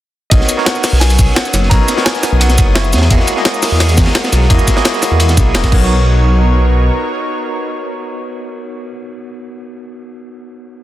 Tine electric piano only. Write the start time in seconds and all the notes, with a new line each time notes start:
0.31 B3 D#4 F#4 A#4 C#5
0.57 B3 D#4 F#4 A#4 C#5
1.70 B3 D#4 F#4 A#4 C#5
1.96 B3 D#4 F#4 A#4 C#5
2.75 A#3 E4 F#4 G#4 C#5
3.10 A#3 E4 F#4 G#4 D#5
3.36 A#3 E4 F#4 G#4 D#5
4.49 A#3 E4 F#4 G#4 D#5
4.76 A#3 E4 F#4 G#4 D#5
5.54 A#3 E4 F#4 G#4 D#5
5.71 B3 D#4 F#4 A#4 C#5